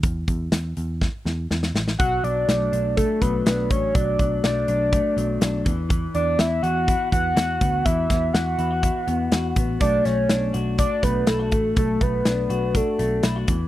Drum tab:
HH |x-x-x-x---------|x-x-x-x-x-x-x-x-|x-x-x-x-x-x-x-x-|x-x-x-x-x-x-x-x-|
SD |----o---o-o-oooo|----o-------o---|----o-------o---|----o-------o---|
BD |o-o-----o-------|o-------o-o---o-|o-o-----o-----o-|o-------o-o---o-|

HH |x-x-x-x-x-x-x-x-|x-x-x-x-x-x-x-x-|x-x-x-x-x-x-x-x-|
SD |--o-o-------o---|--o-o-------o---|----o-------o---|
BD |o-o-----o-----o-|o-------o-o---o-|o-o-----o-----o-|